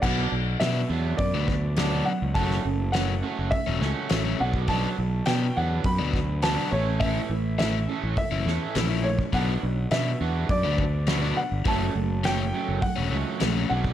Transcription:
<<
  \new Staff \with { instrumentName = "Upright piano" } { \time 4/4 \key b \minor \tempo 4 = 103 fis''4 e''4 d''4. fis''8 | a''4 fis''4 e''4. fis''8 | a''4 g''8 fis''8 b''4 a''8 cis''8 | e''4 e''4 e''4. cis''8 |
fis''4 e''4 d''4. fis''8 | a''4 g''4 fis''4. fis''8 | }
  \new Staff \with { instrumentName = "Distorted electric guitar" } { \time 4/4 \key b \minor <fis b d'>8 <fis b>8 <fis b>8 <fis b d'>8 <fis b>8 <fis b>8 <fis b d'>8 <fis b>8 | <a cis' fis'>8 <a cis'>8 <a cis'>8 <a cis' fis'>8 <a cis'>8 <a cis' fis'>8 <a cis'>8 <fis b d'>8 | <fis b d'>8 <fis b>8 <fis b>8 <fis b d'>8 <fis b>8 <fis b>8 <fis b d'>8 <e a cis'>8 | <e a cis'>8 <e a>8 <e a>8 <e a cis'>8 <e a>8 <e a cis'>8 <e a>8 <e a>8 |
<b d' fis'>8 <b d'>8 <b d'>8 <b d' fis'>8 <b d'>8 <b d'>8 <b d' fis'>8 <b d'>8 | <fis a cis'>8 <fis a>8 <fis a>8 <fis a cis'>8 <fis a>8 <fis a cis'>8 <fis a>8 <fis b d'>8 | }
  \new Staff \with { instrumentName = "Overdriven electric guitar" } { \time 4/4 \key b \minor <b, fis b d'>16 r8. <b, fis b d'>16 r4 <b, fis b d'>16 r8 <b, fis b d'>16 <b, fis b d'>16 r8 | <cis fis a cis'>16 r8. <cis fis a cis'>16 r4 <cis fis a cis'>16 r8 <cis fis a cis'>16 <cis fis a cis'>16 r8 | <b, fis b d'>16 r8. <b, fis b d'>16 r4 <b, fis b d'>16 r8 <b, fis b d'>16 <b, fis b d'>16 r8 | <e a cis' e'>16 r8. <e a cis' e'>16 r4 <e a cis' e'>16 r8 <e a cis' e'>16 <e a cis' e'>16 r8 |
<b, fis b d'>16 r8. <b, fis b d'>16 r4 <b, fis b d'>16 r8 <b, fis b d'>16 <b, fis b d'>16 r8 | <cis fis a cis'>16 r8. <cis fis a cis'>16 r4 <cis fis a cis'>16 r8 <cis fis a cis'>16 <cis fis a cis'>16 r8 | }
  \new Staff \with { instrumentName = "Fingered electric bass" } { \clef bass \time 4/4 \key b \minor b,,8 b,,8 b,8 e,8 fis,16 d,4. cis,16 | fis,,8 fis,,4~ fis,,16 fis,,16 r16 e,,16 cis,16 r16 a,,8 b,,8~ | b,,8 b,,8 b,8 e,8 fis,16 d,4~ d,16 a,,8~ | a,,8 a,,4~ a,,16 a,,16 r16 fis,,16 e,16 r16 ais,,4 |
b,,8 b,,8 b,8 e,8 fis,16 d,4. g,,16 | fis,,8 fis,,4~ fis,,16 fis,,16 r16 e,,16 cis,16 r16 ais,,8 b,,8 | }
  \new DrumStaff \with { instrumentName = "Drums" } \drummode { \time 4/4 <cymc bd>4 <hho sn>4 <hho bd>8 <bd sn>8 <hho sn>4 | <hho bd>16 sn8. <hho sn>4 <hho bd>8 sn8 <hho sn>8. bd16 | <hho bd>4 <hho sn>4 <hho bd>8 <bd sn>8 <hho sn>4 | <hho bd>4 <hho sn>4 <hho bd>8 sn8 <hho sn>8. bd16 |
<hho bd>4 <hho sn>4 <hho bd>8 bd8 <hho sn>4 | <hho bd>4 <hho sn>4 <hho bd>4 <hho sn>8. bd16 | }
>>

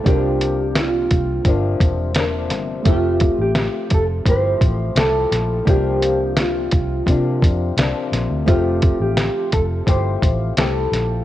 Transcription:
<<
  \new Staff \with { instrumentName = "Clean electric guitar" } { \time 4/4 \key f \major \tempo 4 = 86 g'4 f'4. r4. | f'8. g'8. a'8 c''4 a'4 | g'4 f'4. r4. | f'8. g'8. a'8 c''4 a'4 | }
  \new Staff \with { instrumentName = "Reed electric piano" } { \time 4/4 \key f \major <bes d' f' g'>1 | <a c' g' e''>1 | <bes d' f' g'>1 | <a c' g' e''>1 | }
  \new Staff \with { instrumentName = "Nylon-string guitar" } { \time 4/4 \key f \major <c f bes d'>2 <c f bes d'>4 <c f bes d'>4 | <f a g'>2 <f a e' g'>4 <f a e' g'>4 | <c f bes d'>2 <c f bes d'>4 <c f bes d'>4 | <f a g'>2 <f a e' g'>4 <f a e' g'>4 | }
  \new Staff \with { instrumentName = "Fingered electric bass" } { \clef bass \time 4/4 \key f \major c,4. c,8 g,,8 e,,4 g,,8 | f,,8. a,,8 r16 f,,8 g,,8 a,,8 c,8 bes,,8 | c,4. c,8 c8 f,8 c,16 r16 bes,,16 d,16 | f,,8. a,,8 r16 f,,8 g,,8 a,,8 c,8 bes,,8 | }
  \new DrumStaff \with { instrumentName = "Drums" } \drummode { \time 4/4 <hh bd>8 hh8 <hh sn>8 <hh bd>8 <hh bd>8 <hh bd>8 <hh sn>8 <hh sn>8 | <hh bd>8 <hh bd>8 <hh sn>8 <hh bd>8 <hh bd>8 <hh bd>8 <hh sn>8 <hh sn>8 | <hh bd>8 hh8 <hh sn>8 <hh bd>8 <hh bd>8 <hh bd>8 <hh sn>8 <hh sn>8 | <hh bd>8 <hh bd>8 <hh sn>8 <hh bd>8 <hh bd>8 <hh bd>8 <hh sn>8 <hh sn>8 | }
>>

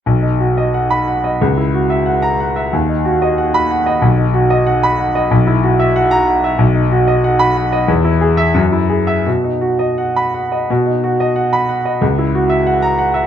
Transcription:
\new Staff \with { instrumentName = "Grand piano" } { \time 2/4 \key b \major \tempo 4 = 92 << { r4 r16 b''8 r16 | r4 r16 ais''8 r16 | r4 r16 b''8 r16 | r4 r16 b''8 r16 |
r4 r16 ais''8 r16 | r4 r16 b''8 r16 | r8. e''16 r8. e''16 | r4 r16 b''8 r16 |
r4 r16 b''8 r16 | r4 r16 ais''8 r16 | } \\ { b,,16 dis'16 fis'16 dis''16 fis''8 fis''16 dis''16 | cis,16 e'16 fis'16 e''16 fis''8 fis''16 e''16 | dis,16 dis'16 fis'16 dis''16 fis''8 fis''16 dis''16 | b,,16 dis'16 fis'16 dis''16 fis''8 fis''16 dis''16 |
b,,16 e'16 fis'16 e''16 fis''8 fis''16 e''16 | b,,16 dis'16 fis'16 dis''16 fis''8 fis''16 dis''16 | e,16 e'16 gis'8 fis,16 e'16 gis'8 | b,16 dis'16 fis'16 dis''16 fis''8 fis''16 dis''16 |
b,16 dis'16 fis'16 dis''16 fis''8 fis''16 dis''16 | cis,16 e'16 fis'16 e''16 fis''8 fis''16 e''16 | } >> }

